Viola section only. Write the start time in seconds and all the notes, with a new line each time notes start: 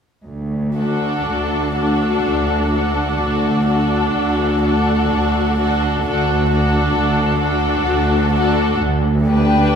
0.77 D4
1.75 D4
2.72 D4
3.69 D4
4.64 D4
5.60 D4
6.06 D4
6.51 D4
7.41 D4
8.32 D4
9.27 D4